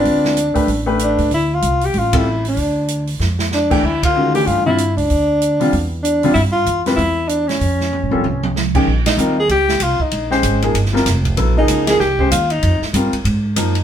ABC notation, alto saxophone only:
X:1
M:4/4
L:1/8
Q:"Swing" 1/4=191
K:Ddor
V:1 name="Alto saxophone"
D4- D z D2 | E F2 G F E2 D- | D3 z3 D2 | E F2 G F E2 D- |
D4- D z D2 | E F2 z E2 D ^C- | ^C6- C z | [K:Bbdor] z E2 A G2 F E- |
E z6 z | z E2 A G2 F E- | E z6 z |]